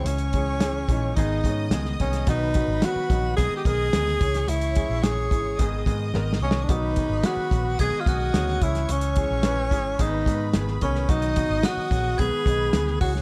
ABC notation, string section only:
X:1
M:4/4
L:1/8
Q:1/4=109
K:G#m
V:1 name="String section"
[cc']4 [dd']4 | [Bb]4 [dd']3 [cc']- | [cc']4 [dd']4 | [Bb]4 [dd']3 [cc']- |
[cc']4 [Bb]4 | [dd']4 [Bb]3 [cc'] |]